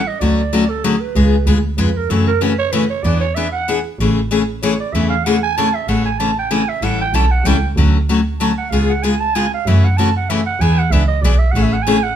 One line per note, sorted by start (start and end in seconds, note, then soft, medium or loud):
0.08 0.21 D#5 medium
0.19 0.97 D2 medium
0.19 0.40 D3 medium
0.19 0.40 F#3 medium
0.19 0.41 A3 medium
0.19 0.41 C#4 medium
0.19 0.41 F#4 medium
0.19 0.71 D5 medium
0.53 0.63 D3 medium
0.53 0.63 F#3 medium
0.53 0.63 A3 loud
0.53 0.63 C#4 medium
0.53 0.64 F#4 medium
0.70 0.86 A4 medium
0.84 0.95 D3 loud
0.84 0.95 F#3 loud
0.84 0.95 A3 loud
0.84 0.95 C#4 medium
0.84 0.95 F#4 loud
0.84 1.02 G#4 medium
1.01 1.46 B4 medium
1.15 1.41 C#2 medium
1.15 1.35 C#3 medium
1.15 1.35 G#3 medium
1.15 1.35 B3 medium
1.15 1.35 F4 medium
1.15 1.35 G#4 medium
1.46 1.73 D2 medium
1.46 1.57 C#3 medium
1.46 1.57 G#3 medium
1.46 1.57 B3 medium
1.46 1.57 F4 medium
1.46 1.58 G#4 loud
1.77 2.05 F2 medium
1.77 1.89 C#3 medium
1.77 1.89 G#3 medium
1.77 1.89 B3 medium
1.77 1.89 F4 loud
1.77 1.89 G#4 medium
1.77 1.98 B4 medium
1.97 2.12 A#4 medium
2.09 2.85 F#2 medium
2.09 2.29 C#3 medium
2.09 2.29 E3 medium
2.09 2.30 A3 medium
2.09 2.30 C#4 medium
2.09 2.30 F#4 medium
2.09 2.27 A4 medium
2.27 2.43 A#4 loud
2.41 2.52 C#3 medium
2.41 2.52 E3 medium
2.41 2.52 A3 medium
2.41 2.52 C#4 loud
2.41 2.52 F#4 medium
2.41 2.58 B4 medium
2.59 2.74 C#5 loud
2.72 2.83 C#3 loud
2.72 2.83 E3 loud
2.72 2.83 A3 medium
2.72 2.83 C#4 medium
2.72 2.84 F#4 loud
2.72 2.90 B4 medium
2.90 3.05 C#5 loud
3.04 3.79 E2 medium
3.04 3.24 E3 medium
3.04 3.24 B3 medium
3.04 3.24 D4 medium
3.04 3.24 G#4 medium
3.04 3.20 D5 loud
3.21 3.37 C#5 loud
3.35 3.47 E3 medium
3.35 3.47 B3 medium
3.35 3.47 D4 loud
3.35 3.47 G#4 medium
3.35 3.52 E5 medium
3.52 3.83 F#5 loud
3.68 3.78 E3 loud
3.68 3.78 B3 medium
3.68 3.78 D4 medium
3.68 3.79 G#4 medium
3.99 4.74 A1 loud
3.99 4.19 C#3 medium
3.99 4.19 E3 medium
3.99 4.19 A3 medium
3.99 4.19 C#4 medium
3.99 4.19 G#4 medium
4.31 4.41 C#3 medium
4.31 4.41 E3 medium
4.31 4.41 A3 medium
4.31 4.42 C#4 medium
4.31 4.42 G#4 medium
4.63 4.73 C#3 medium
4.63 4.73 E3 loud
4.63 4.73 A3 loud
4.63 4.73 C#4 loud
4.63 4.73 G#4 loud
4.63 4.79 C#5 medium
4.81 4.94 D5 loud
4.93 5.69 E2 medium
4.93 5.13 C#3 medium
4.93 5.14 E3 medium
4.93 5.13 A3 medium
4.93 5.14 C#4 medium
4.93 5.14 G#4 medium
4.93 5.09 E5 medium
5.10 5.26 F5 loud
5.25 5.36 C#3 medium
5.25 5.36 E3 medium
5.25 5.36 A3 medium
5.25 5.36 C#4 loud
5.25 5.36 G#4 medium
5.25 5.43 F#5 medium
5.43 5.59 G#5 loud
5.57 5.67 C#3 medium
5.57 5.67 E3 medium
5.57 5.68 A3 loud
5.57 5.68 C#4 loud
5.57 5.68 G#4 loud
5.57 5.76 A5 loud
5.75 5.90 E5 medium
5.88 6.63 A1 medium
5.88 6.07 C#3 medium
5.88 6.08 E3 medium
5.88 6.08 A3 medium
5.88 6.08 C#4 medium
5.88 6.08 G#4 medium
5.88 6.05 F#5 medium
6.06 6.21 G#5 loud
6.19 6.30 C#3 medium
6.19 6.30 E3 medium
6.19 6.30 A3 medium
6.19 6.30 C#4 medium
6.19 6.30 G#4 medium
6.19 6.37 A5 loud
6.39 6.53 G5 medium
6.51 6.61 C#3 medium
6.51 6.61 E3 loud
6.51 6.61 A3 medium
6.51 6.62 C#4 medium
6.51 6.62 G#4 medium
6.51 6.70 G#5 loud
6.69 6.85 E5 loud
6.81 7.07 A1 medium
6.81 7.02 E3 medium
6.81 7.02 G3 medium
6.81 7.02 C#4 medium
6.81 7.02 E4 medium
6.81 7.02 A4 medium
6.81 7.01 F#5 medium
7.02 7.16 G5 loud
7.13 7.40 B1 medium
7.13 7.24 E3 medium
7.13 7.25 G3 medium
7.13 7.25 C#4 loud
7.13 7.25 E4 loud
7.13 7.25 A4 medium
7.13 7.33 A5 loud
7.32 7.47 F#5 loud
7.44 7.71 C#2 medium
7.44 7.56 E3 medium
7.44 7.56 G3 loud
7.44 7.56 C#4 loud
7.44 7.56 E4 loud
7.44 7.56 A4 loud
7.44 7.71 G5 medium
7.76 8.52 D2 loud
7.76 7.96 D3 medium
7.76 7.97 F#3 medium
7.76 7.97 A3 medium
7.76 7.97 C#4 medium
7.76 7.97 F#4 medium
8.09 8.19 D3 medium
8.09 8.19 F#3 medium
8.09 8.19 A3 medium
8.09 8.19 C#4 medium
8.09 8.20 F#4 medium
8.40 8.50 D3 medium
8.40 8.51 F#3 loud
8.40 8.51 A3 loud
8.40 8.51 C#4 medium
8.40 8.51 F#4 loud
8.40 8.57 A5 medium
8.58 8.71 F#5 medium
8.70 9.47 C#2 medium
8.70 8.91 C#3 medium
8.70 8.91 G#3 medium
8.70 8.91 B3 medium
8.70 8.92 F4 medium
8.70 8.92 G#4 medium
8.70 8.91 F5 medium
8.89 9.04 F#5 medium
9.03 9.14 C#3 medium
9.03 9.14 G#3 medium
9.03 9.14 B3 medium
9.03 9.14 F4 medium
9.03 9.14 G#4 loud
9.03 9.22 G#5 medium
9.20 9.36 A5 loud
9.35 9.45 C#3 medium
9.35 9.45 G#3 medium
9.35 9.45 B3 loud
9.35 9.46 F4 loud
9.35 9.46 G#4 loud
9.35 9.53 G#5 medium
9.54 9.69 F5 loud
9.66 10.41 F#2 loud
9.66 9.86 C#3 medium
9.66 9.86 E3 medium
9.66 9.86 A3 medium
9.66 9.86 C#4 medium
9.66 9.86 F#4 medium
9.66 9.86 E5 medium
9.85 9.99 F#5 medium
9.97 10.08 C#3 medium
9.97 10.09 E3 medium
9.97 10.09 A3 medium
9.97 10.09 C#4 medium
9.97 10.09 F#4 medium
9.97 10.16 A5 loud
10.17 10.31 F#5 medium
10.30 10.40 C#3 medium
10.30 10.40 E3 medium
10.30 10.40 A3 medium
10.30 10.40 C#4 loud
10.30 10.40 F#4 loud
10.30 10.46 E5 medium
10.46 10.63 F#5 loud
10.60 10.85 E2 loud
10.60 10.80 E3 medium
10.60 10.80 B3 medium
10.60 10.81 D4 medium
10.60 10.81 G#4 medium
10.60 10.80 G#5 loud
10.78 10.93 F#5 loud
10.90 11.18 C#2 medium
10.90 11.02 E3 medium
10.90 11.03 B3 medium
10.90 11.03 D4 medium
10.90 11.03 G#4 medium
10.90 11.07 E5 medium
11.08 11.23 D#5 medium
11.21 11.49 B1 medium
11.21 11.34 E3 loud
11.21 11.34 B3 loud
11.21 11.34 D4 loud
11.21 11.35 G#4 loud
11.21 11.40 D5 medium
11.39 11.53 E5 medium
11.52 12.16 A1 loud
11.52 11.74 C#3 medium
11.52 11.64 F#5 medium
11.56 11.75 E3 medium
11.56 11.75 A3 medium
11.56 11.75 C#4 medium
11.56 11.75 G#4 medium
11.63 11.75 E5 medium
11.73 11.84 F#5 loud
11.83 11.97 C#3 medium
11.83 11.97 E3 medium
11.83 12.05 G#5 loud
11.87 11.97 A3 medium
11.87 11.97 C#4 loud
11.87 11.97 G#4 loud
12.04 12.16 F#5 loud